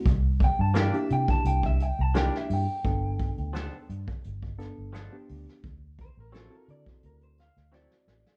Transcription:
<<
  \new Staff \with { instrumentName = "Clean electric guitar" } { \time 4/4 \key c \major \tempo 4 = 86 r8 g''16 a''16 g''16 e''16 g''16 a''16 g''16 e''16 g''16 a''16 g''16 e''16 g''8~ | g''4. r2 r8 | r8 c''16 bes'16 f'16 bes'16 d''16 c''16 bes'16 c''16 f''8 d''4 | }
  \new Staff \with { instrumentName = "Reed electric piano" } { \time 4/4 \key c \major r4 <bes d' e' g'>16 <bes d' e' g'>4~ <bes d' e' g'>16 r8 <bes d' e' g'>8. r16 | <b d' f' a'>4. r4 <b d' f' a'>8 r16 <b d' f' g'>8. | r4 <c' e' fis' a'>16 <c' e' fis' a'>4~ <c' e' fis' a'>16 r8 <c' e' fis' c''>8. r16 | }
  \new Staff \with { instrumentName = "Clean electric guitar" } { \time 4/4 \key c \major r4 <e bes d' g'>8 r4. <e bes d' g'>8 r8 | r4 <f b d' a'>8 r4. <f b d' a'>8 r8 | r4 <fis c' e' a'>8 r4. <fis c' e' a'>8 r8 | }
  \new Staff \with { instrumentName = "Fingered electric bass" } { \clef bass \time 4/4 \key c \major c,8. g,8 r16 c16 r16 c,8. c,8 r16 g,16 r16 | g,,8. d,8 r16 g,16 r16 g,,8. g,,8 r16 d,16 r16 | d,8. a,,8 r16 d16 r16 d,8. d,8 r16 a,,16 r16 | }
  \new DrumStaff \with { instrumentName = "Drums" } \drummode { \time 4/4 <hh bd>8 <hh bd>8 <hh sn>16 hh16 hh16 <hh bd>16 hh16 <hh bd>16 hh8 <hh sn>16 sn16 hho8 | <hh bd>8 <hh bd>16 hh16 <hh sn>8 hh16 <hh bd>16 hh16 bd16 <hh sn>8 <hh sn>8 hho16 sn16 | <hh bd>8 <hh bd>8 <hh sn>16 hh16 hh16 <hh bd sn>16 hh16 hh16 <hh sn>16 sn16 sn16 sn16 sn16 sn16 | }
>>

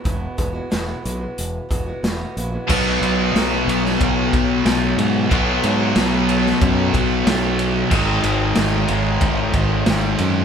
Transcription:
<<
  \new Staff \with { instrumentName = "Steel-string acoustic guitar" } { \clef bass \time 4/4 \key b \major \tempo 4 = 92 <e, b, e gis b fis'>8 <e gis b fis'>16 <e gis b fis'>16 <e, b, e gis b fis'>16 <e gis b fis'>16 <e gis b fis'>16 <e gis b fis'>8. <e gis b fis'>16 <e gis b fis'>16 <e gis b fis'>8 <e gis b fis'>16 <e gis b fis'>16 | r1 | r1 | r1 | }
  \new Staff \with { instrumentName = "Distorted electric guitar" } { \clef bass \time 4/4 \key b \major r1 | <b, fis b>1 | <b, fis b>1 | <gis, dis gis>1 | }
  \new Staff \with { instrumentName = "Distorted electric guitar" } { \clef bass \time 4/4 \key b \major r1 | <b, fis b>4. <b, fis b>4. <b, fis b>4 | <b, fis b>4. <b, fis b>4. <b, fis b>4 | <gis, dis gis>4. <gis, dis gis>4. <gis, dis gis>4 | }
  \new Staff \with { instrumentName = "Overdriven electric guitar" } { \clef bass \time 4/4 \key b \major r1 | <b, fis b>1 | <b, fis b>1 | <gis, dis gis>1 | }
  \new Staff \with { instrumentName = "Fingered electric bass" } { \clef bass \time 4/4 \key b \major e,,8 e,,8 e,,8 b,,8 e,,8 e,,8 e,,8 ais,,8 | b,,8 b,,8 b,,8 b,,8 b,,8 b,,8 b,,8 gis,8 | b,,8 gis,8 b,,4 fis,8 b,,8 b,,4 | gis,,8 gis,,8 gis,,8 gis,,8 gis,,8 gis,,8 gis,,8 fis,8 | }
  \new DrumStaff \with { instrumentName = "Drums" } \drummode { \time 4/4 <hh bd>8 <hh bd>8 <hh sn>8 hh8 hh8 <hh bd>8 <hh sn>8 hh8 | <cymc bd>8 cymr8 <cymr sn>8 cymr16 sn16 <bd cymr>8 <bd cymr>8 <cymr sn>8 cymr8 | <bd cymr>8 cymr8 <cymr sn>8 cymr16 sn16 <bd cymr>8 <bd cymr>8 <cymr sn>8 cymr8 | <cymc bd>8 cymr8 <cymr sn>8 cymr8 <bd cymr>8 <bd cymr>8 <cymr sn>8 cymr8 | }
>>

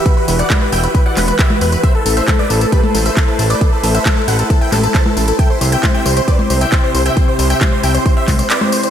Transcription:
<<
  \new Staff \with { instrumentName = "Supersaw synth" } { \time 4/4 \key a \dorian \tempo 4 = 135 b'16 b'16 b'16 <d'' fis''>16 b'16 b'16 <e'' g''>16 b'16 b'16 <d'' fis''>16 b'16 b'16 <g' e''>16 b'16 b'16 b'16 | <c'' e''>16 a'16 a'16 <c'' e''>16 a'16 <b' d''>16 a'16 a'16 <g' b'>16 a'16 a'16 <c'' e''>16 a'16 a'16 a'16 <b' d''>16 | a'16 a'16 a'16 <c'' e''>16 a'16 a'16 <a' fis''>16 a'16 a'16 <e'' g''>16 a'16 a'16 <c'' a''>16 a'16 a'16 a'16 | <e'' g''>16 c''16 c''16 <e'' g''>16 c''16 <e'' g''>16 c''16 c''16 <b' d''>16 c''16 c''16 <e'' g''>16 c''16 c''16 c''16 <e'' g''>16 |
c''16 c''16 c''16 <e'' g''>16 c''16 c''16 <e'' g''>16 c''16 c''16 <c'' e''>16 c''16 c''16 <b' d''>16 c''16 c''16 c''16 | }
  \new Staff \with { instrumentName = "Synth pluck" } { \time 4/4 \key a \dorian b'16 b'16 b'16 fis''16 b'16 b'16 g''16 b'16 b'16 fis''16 b'16 b'16 e''16 b'16 b'16 b'16 | e''16 a'16 a'16 e''16 a'16 d''16 a'16 a'16 b'16 a'16 a'16 e''16 a'16 a'16 a'16 d''16 | a'16 a'16 a'16 e''16 a'16 a'16 fis''16 a'16 a'16 g''16 a'16 a'16 a''16 a'16 a'16 a'16 | g''16 c''16 c''16 g''16 c''16 g''16 c''16 c''16 d''16 c''16 c''16 g''16 c''16 c''16 c''16 g''16 |
c''16 c''16 c''16 g''16 c''16 c''16 g''16 c''16 c''16 e''16 c''16 c''16 d''16 c''16 c''16 c''16 | }
  \new Staff \with { instrumentName = "Analog synth pad" } { \time 4/4 \key a \dorian << { <e fis' g'>1 | <a b' c''>1~ | <a b' c''>1 | <c g'>1~ |
<c g'>1 | } \\ { e'1~ | e'1~ | e'1 | c'1~ |
c'1 | } >> }
  \new Staff \with { instrumentName = "Analog synth bass" } { \clef bass \time 4/4 \key a \dorian r8 e,,8 r8 e,,8 r8 e,,8 r8 e,,8 | r8 a,,8 r8 a,,8 r8 a,,8 r8 a,,8 | r8 a,,8 r8 a,,8 r8 a,,8 r8 a,,8 | r8 c,8 r8 c,8 r8 c,8 r8 c,8 |
r8 c,8 r8 c,8 r8 c,8 r4 | }
  \new DrumStaff \with { instrumentName = "Drums" } \drummode { \time 4/4 <hh bd tamb>8 <hho tamb>16 <hh tamb>16 <hc cgho hh bd tamb>8 <hho tamb>16 <hh tamb>16 <hh bd tamb>8 <hc cgho hho tamb>16 <hh tamb>16 <hc hh bd tamb>16 cgho16 <hho tamb>16 <hh tamb>16 | <hh bd tamb>8 <hho tamb>16 <hh tamb>16 <hc cgho hh bd tamb>8 <hho tamb>16 <hh tamb>16 <hh bd tamb>16 cgho16 <hho tamb>16 <hh tamb>16 <hc hh bd tamb>8 <hho tamb>16 <hh tamb>16 | <hh bd tamb>8 <hho tamb>16 <hh tamb>16 <hc cgho hh bd tamb>8 <hho tamb>16 <hh tamb>16 <hh bd tamb>8 <hc cgho hho tamb>16 <hh tamb>16 <hc hh bd tamb>16 cgho16 <hho tamb>16 <hh tamb>16 | <hh bd tamb>8 <hho tamb>16 <hh tamb>16 <hc cgho hh bd tamb>8 <hho tamb>16 <hh tamb>16 <hh bd tamb>16 cgho16 <hho tamb>16 <hh tamb>16 <hc hh bd tamb>8 <hho tamb>16 <hh tamb>16 |
<hh bd tamb>8 <hho tamb>16 <hh tamb>16 <hc cgho hh bd tamb>8 <hho tamb>16 <hh tamb>16 <hh bd tamb>8 <hc cgho hho bd tamb>16 <hh tamb>16 <hc hh tamb>16 cgho16 <hho tamb>16 <hh tamb>16 | }
>>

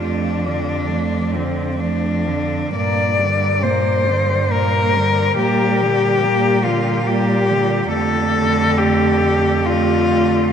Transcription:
<<
  \new Staff \with { instrumentName = "Cello" } { \time 3/4 \key d \minor \tempo 4 = 69 d'4. c'8 d'4 | d''4 c''4 bes'4 | g'4. f'8 g'4 | a'4 g'4 f'4 | }
  \new Staff \with { instrumentName = "Cello" } { \time 3/4 \key d \minor a8 f8 a8 f8 a8 f8 | bes8 g8 bes8 g8 bes8 g8 | bes8 g8 bes8 g8 bes8 g8 | a2 a4 | }
  \new Staff \with { instrumentName = "Cello" } { \clef bass \time 3/4 \key d \minor f8 d8 f8 d8 f8 d8 | bes,8 d8 bes,8 d8 bes,8 d8 | g8 d8 g8 d8 g8 d8 | d2 d4 | }
  \new Staff \with { instrumentName = "Cello" } { \clef bass \time 3/4 \key d \minor f,2. | g,2. | bes,2. | f,2. | }
>>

